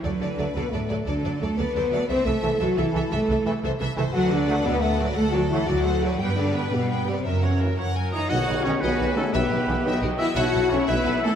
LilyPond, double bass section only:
\new Staff \with { instrumentName = "Double bass section" } { \clef bass \time 6/8 \key d \mixolydian \tempo 4. = 117 d,8 d,8 d,8 d,8 d,8 d,8 | d,8 d,8 d,8 d,8 d,8 d,8 | c,8 c,8 c,8 c,8 c,8 c,8 | c,8 c,8 c,8 c,8 c,8 c,8 |
d,4. d,4. | d,4. d,4. | g,4. g,4. | fis,4. fis,4. |
\key b \mixolydian b,,8 b,,8 b,,8 b,,8 b,,8 r8 | b,,8 b,,8 b,,8 b,,8 b,,8 r8 | b,,8 b,,8 b,,8 b,,8 b,,8 r8 | }